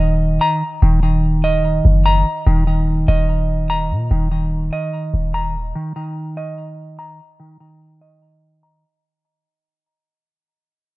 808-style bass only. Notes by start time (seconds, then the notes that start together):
Already playing: D#1
0.82 D#1
1.85 F#1
2.47 D#1
3.08 D#1
3.90 A#2
4.11 D#1
5.14 D#1